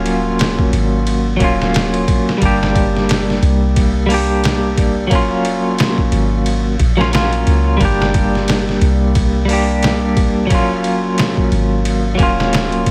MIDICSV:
0, 0, Header, 1, 4, 480
1, 0, Start_track
1, 0, Tempo, 674157
1, 1719, Time_signature, 4, 2, 24, 8
1, 9191, End_track
2, 0, Start_track
2, 0, Title_t, "Clean electric guitar"
2, 0, Program_c, 0, 27
2, 0, Note_on_c, 0, 54, 101
2, 0, Note_on_c, 0, 58, 89
2, 0, Note_on_c, 0, 61, 92
2, 0, Note_on_c, 0, 65, 107
2, 962, Note_off_c, 0, 54, 0
2, 971, Note_off_c, 0, 58, 0
2, 973, Note_on_c, 0, 54, 101
2, 980, Note_off_c, 0, 61, 0
2, 989, Note_off_c, 0, 65, 0
2, 992, Note_on_c, 0, 58, 86
2, 1010, Note_on_c, 0, 61, 87
2, 1026, Note_on_c, 0, 65, 101
2, 1682, Note_off_c, 0, 54, 0
2, 1691, Note_off_c, 0, 58, 0
2, 1692, Note_on_c, 0, 55, 104
2, 1700, Note_off_c, 0, 61, 0
2, 1709, Note_off_c, 0, 65, 0
2, 1712, Note_on_c, 0, 58, 93
2, 1729, Note_on_c, 0, 62, 94
2, 1747, Note_on_c, 0, 67, 115
2, 2881, Note_off_c, 0, 55, 0
2, 2891, Note_off_c, 0, 58, 0
2, 2893, Note_on_c, 0, 55, 91
2, 2900, Note_off_c, 0, 62, 0
2, 2909, Note_off_c, 0, 67, 0
2, 2909, Note_on_c, 0, 58, 90
2, 2929, Note_on_c, 0, 62, 90
2, 2947, Note_on_c, 0, 67, 103
2, 3602, Note_off_c, 0, 55, 0
2, 3610, Note_off_c, 0, 58, 0
2, 3612, Note_on_c, 0, 54, 94
2, 3620, Note_off_c, 0, 62, 0
2, 3629, Note_off_c, 0, 67, 0
2, 3631, Note_on_c, 0, 58, 89
2, 3649, Note_on_c, 0, 61, 94
2, 3668, Note_on_c, 0, 65, 104
2, 4801, Note_off_c, 0, 54, 0
2, 4811, Note_off_c, 0, 58, 0
2, 4820, Note_off_c, 0, 61, 0
2, 4829, Note_off_c, 0, 65, 0
2, 4963, Note_on_c, 0, 54, 80
2, 4971, Note_on_c, 0, 58, 76
2, 4980, Note_on_c, 0, 61, 71
2, 4991, Note_on_c, 0, 65, 88
2, 5048, Note_off_c, 0, 54, 0
2, 5052, Note_off_c, 0, 58, 0
2, 5056, Note_off_c, 0, 61, 0
2, 5062, Note_off_c, 0, 65, 0
2, 5065, Note_on_c, 0, 54, 88
2, 5074, Note_on_c, 0, 58, 83
2, 5082, Note_on_c, 0, 61, 80
2, 5092, Note_on_c, 0, 65, 100
2, 5528, Note_off_c, 0, 54, 0
2, 5532, Note_off_c, 0, 58, 0
2, 5532, Note_on_c, 0, 55, 98
2, 5536, Note_off_c, 0, 61, 0
2, 5541, Note_off_c, 0, 65, 0
2, 5551, Note_on_c, 0, 58, 95
2, 5570, Note_on_c, 0, 62, 86
2, 5588, Note_on_c, 0, 67, 112
2, 6721, Note_off_c, 0, 55, 0
2, 6731, Note_off_c, 0, 58, 0
2, 6731, Note_on_c, 0, 55, 96
2, 6740, Note_off_c, 0, 62, 0
2, 6749, Note_off_c, 0, 67, 0
2, 6749, Note_on_c, 0, 58, 89
2, 6767, Note_on_c, 0, 62, 87
2, 6786, Note_on_c, 0, 67, 101
2, 7441, Note_off_c, 0, 55, 0
2, 7450, Note_off_c, 0, 58, 0
2, 7453, Note_on_c, 0, 54, 99
2, 7459, Note_off_c, 0, 62, 0
2, 7468, Note_off_c, 0, 67, 0
2, 7472, Note_on_c, 0, 58, 90
2, 7490, Note_on_c, 0, 61, 91
2, 7509, Note_on_c, 0, 65, 114
2, 8642, Note_off_c, 0, 54, 0
2, 8651, Note_off_c, 0, 58, 0
2, 8651, Note_on_c, 0, 54, 95
2, 8660, Note_off_c, 0, 61, 0
2, 8669, Note_on_c, 0, 58, 90
2, 8670, Note_off_c, 0, 65, 0
2, 8687, Note_on_c, 0, 61, 92
2, 8706, Note_on_c, 0, 65, 107
2, 9191, Note_off_c, 0, 54, 0
2, 9191, Note_off_c, 0, 58, 0
2, 9191, Note_off_c, 0, 61, 0
2, 9191, Note_off_c, 0, 65, 0
2, 9191, End_track
3, 0, Start_track
3, 0, Title_t, "808-style bass"
3, 0, Program_c, 1, 38
3, 0, Note_on_c, 1, 27, 106
3, 500, Note_off_c, 1, 27, 0
3, 518, Note_on_c, 1, 32, 100
3, 979, Note_off_c, 1, 32, 0
3, 999, Note_on_c, 1, 27, 99
3, 1460, Note_off_c, 1, 27, 0
3, 1721, Note_on_c, 1, 31, 94
3, 2421, Note_off_c, 1, 31, 0
3, 2438, Note_on_c, 1, 36, 99
3, 3639, Note_on_c, 1, 27, 100
3, 3650, Note_off_c, 1, 36, 0
3, 4340, Note_off_c, 1, 27, 0
3, 4357, Note_on_c, 1, 32, 102
3, 4819, Note_off_c, 1, 32, 0
3, 4839, Note_on_c, 1, 34, 85
3, 5300, Note_off_c, 1, 34, 0
3, 5318, Note_on_c, 1, 37, 76
3, 5535, Note_off_c, 1, 37, 0
3, 5557, Note_on_c, 1, 31, 94
3, 6259, Note_off_c, 1, 31, 0
3, 6276, Note_on_c, 1, 36, 108
3, 7480, Note_on_c, 1, 27, 94
3, 7491, Note_off_c, 1, 36, 0
3, 8181, Note_off_c, 1, 27, 0
3, 8199, Note_on_c, 1, 32, 96
3, 8660, Note_off_c, 1, 32, 0
3, 8679, Note_on_c, 1, 27, 98
3, 9140, Note_off_c, 1, 27, 0
3, 9191, End_track
4, 0, Start_track
4, 0, Title_t, "Drums"
4, 40, Note_on_c, 9, 51, 68
4, 111, Note_off_c, 9, 51, 0
4, 279, Note_on_c, 9, 51, 86
4, 291, Note_on_c, 9, 38, 119
4, 350, Note_off_c, 9, 51, 0
4, 362, Note_off_c, 9, 38, 0
4, 417, Note_on_c, 9, 36, 92
4, 488, Note_off_c, 9, 36, 0
4, 520, Note_on_c, 9, 51, 68
4, 591, Note_off_c, 9, 51, 0
4, 759, Note_on_c, 9, 51, 83
4, 831, Note_off_c, 9, 51, 0
4, 999, Note_on_c, 9, 51, 69
4, 1000, Note_on_c, 9, 36, 98
4, 1070, Note_off_c, 9, 51, 0
4, 1071, Note_off_c, 9, 36, 0
4, 1151, Note_on_c, 9, 38, 52
4, 1222, Note_off_c, 9, 38, 0
4, 1241, Note_on_c, 9, 51, 83
4, 1253, Note_on_c, 9, 38, 121
4, 1312, Note_off_c, 9, 51, 0
4, 1324, Note_off_c, 9, 38, 0
4, 1379, Note_on_c, 9, 51, 49
4, 1450, Note_off_c, 9, 51, 0
4, 1480, Note_on_c, 9, 36, 101
4, 1481, Note_on_c, 9, 51, 77
4, 1552, Note_off_c, 9, 36, 0
4, 1552, Note_off_c, 9, 51, 0
4, 1630, Note_on_c, 9, 38, 46
4, 1701, Note_off_c, 9, 38, 0
4, 1720, Note_on_c, 9, 51, 81
4, 1721, Note_on_c, 9, 36, 107
4, 1792, Note_off_c, 9, 36, 0
4, 1792, Note_off_c, 9, 51, 0
4, 1871, Note_on_c, 9, 38, 51
4, 1942, Note_off_c, 9, 38, 0
4, 1961, Note_on_c, 9, 36, 92
4, 1962, Note_on_c, 9, 51, 68
4, 2032, Note_off_c, 9, 36, 0
4, 2033, Note_off_c, 9, 51, 0
4, 2111, Note_on_c, 9, 38, 34
4, 2183, Note_off_c, 9, 38, 0
4, 2202, Note_on_c, 9, 51, 91
4, 2213, Note_on_c, 9, 38, 124
4, 2273, Note_off_c, 9, 51, 0
4, 2284, Note_off_c, 9, 38, 0
4, 2351, Note_on_c, 9, 38, 37
4, 2422, Note_off_c, 9, 38, 0
4, 2440, Note_on_c, 9, 51, 66
4, 2511, Note_off_c, 9, 51, 0
4, 2680, Note_on_c, 9, 36, 106
4, 2680, Note_on_c, 9, 51, 85
4, 2751, Note_off_c, 9, 51, 0
4, 2752, Note_off_c, 9, 36, 0
4, 2919, Note_on_c, 9, 46, 87
4, 2990, Note_off_c, 9, 46, 0
4, 3159, Note_on_c, 9, 51, 86
4, 3170, Note_on_c, 9, 38, 116
4, 3230, Note_off_c, 9, 51, 0
4, 3241, Note_off_c, 9, 38, 0
4, 3400, Note_on_c, 9, 36, 92
4, 3400, Note_on_c, 9, 51, 70
4, 3471, Note_off_c, 9, 36, 0
4, 3471, Note_off_c, 9, 51, 0
4, 3639, Note_on_c, 9, 51, 82
4, 3640, Note_on_c, 9, 36, 104
4, 3710, Note_off_c, 9, 51, 0
4, 3711, Note_off_c, 9, 36, 0
4, 3879, Note_on_c, 9, 51, 73
4, 3950, Note_off_c, 9, 51, 0
4, 4119, Note_on_c, 9, 51, 92
4, 4130, Note_on_c, 9, 38, 124
4, 4190, Note_off_c, 9, 51, 0
4, 4201, Note_off_c, 9, 38, 0
4, 4256, Note_on_c, 9, 36, 86
4, 4328, Note_off_c, 9, 36, 0
4, 4357, Note_on_c, 9, 51, 68
4, 4428, Note_off_c, 9, 51, 0
4, 4599, Note_on_c, 9, 51, 89
4, 4670, Note_off_c, 9, 51, 0
4, 4838, Note_on_c, 9, 36, 93
4, 4838, Note_on_c, 9, 51, 70
4, 4909, Note_off_c, 9, 36, 0
4, 4909, Note_off_c, 9, 51, 0
4, 4989, Note_on_c, 9, 38, 52
4, 5060, Note_off_c, 9, 38, 0
4, 5077, Note_on_c, 9, 51, 90
4, 5088, Note_on_c, 9, 38, 118
4, 5148, Note_off_c, 9, 51, 0
4, 5159, Note_off_c, 9, 38, 0
4, 5216, Note_on_c, 9, 51, 47
4, 5287, Note_off_c, 9, 51, 0
4, 5317, Note_on_c, 9, 51, 70
4, 5388, Note_off_c, 9, 51, 0
4, 5558, Note_on_c, 9, 36, 102
4, 5558, Note_on_c, 9, 51, 83
4, 5629, Note_off_c, 9, 36, 0
4, 5629, Note_off_c, 9, 51, 0
4, 5707, Note_on_c, 9, 38, 54
4, 5778, Note_off_c, 9, 38, 0
4, 5797, Note_on_c, 9, 51, 68
4, 5798, Note_on_c, 9, 36, 96
4, 5868, Note_off_c, 9, 51, 0
4, 5869, Note_off_c, 9, 36, 0
4, 5948, Note_on_c, 9, 38, 34
4, 6019, Note_off_c, 9, 38, 0
4, 6037, Note_on_c, 9, 51, 95
4, 6048, Note_on_c, 9, 38, 119
4, 6108, Note_off_c, 9, 51, 0
4, 6120, Note_off_c, 9, 38, 0
4, 6187, Note_on_c, 9, 38, 34
4, 6258, Note_off_c, 9, 38, 0
4, 6276, Note_on_c, 9, 51, 67
4, 6348, Note_off_c, 9, 51, 0
4, 6516, Note_on_c, 9, 51, 85
4, 6518, Note_on_c, 9, 36, 102
4, 6588, Note_off_c, 9, 51, 0
4, 6589, Note_off_c, 9, 36, 0
4, 6756, Note_on_c, 9, 46, 83
4, 6827, Note_off_c, 9, 46, 0
4, 6996, Note_on_c, 9, 51, 84
4, 7007, Note_on_c, 9, 38, 119
4, 7067, Note_off_c, 9, 51, 0
4, 7078, Note_off_c, 9, 38, 0
4, 7239, Note_on_c, 9, 36, 99
4, 7239, Note_on_c, 9, 51, 73
4, 7310, Note_off_c, 9, 36, 0
4, 7310, Note_off_c, 9, 51, 0
4, 7479, Note_on_c, 9, 36, 105
4, 7479, Note_on_c, 9, 51, 88
4, 7551, Note_off_c, 9, 36, 0
4, 7551, Note_off_c, 9, 51, 0
4, 7719, Note_on_c, 9, 51, 69
4, 7790, Note_off_c, 9, 51, 0
4, 7959, Note_on_c, 9, 51, 87
4, 7970, Note_on_c, 9, 38, 117
4, 8030, Note_off_c, 9, 51, 0
4, 8041, Note_off_c, 9, 38, 0
4, 8098, Note_on_c, 9, 36, 90
4, 8169, Note_off_c, 9, 36, 0
4, 8201, Note_on_c, 9, 51, 64
4, 8272, Note_off_c, 9, 51, 0
4, 8439, Note_on_c, 9, 51, 83
4, 8510, Note_off_c, 9, 51, 0
4, 8678, Note_on_c, 9, 36, 98
4, 8678, Note_on_c, 9, 51, 70
4, 8749, Note_off_c, 9, 51, 0
4, 8750, Note_off_c, 9, 36, 0
4, 8829, Note_on_c, 9, 38, 52
4, 8901, Note_off_c, 9, 38, 0
4, 8921, Note_on_c, 9, 51, 84
4, 8932, Note_on_c, 9, 38, 116
4, 8992, Note_off_c, 9, 51, 0
4, 9003, Note_off_c, 9, 38, 0
4, 9059, Note_on_c, 9, 51, 47
4, 9131, Note_off_c, 9, 51, 0
4, 9158, Note_on_c, 9, 36, 98
4, 9159, Note_on_c, 9, 51, 81
4, 9191, Note_off_c, 9, 36, 0
4, 9191, Note_off_c, 9, 51, 0
4, 9191, End_track
0, 0, End_of_file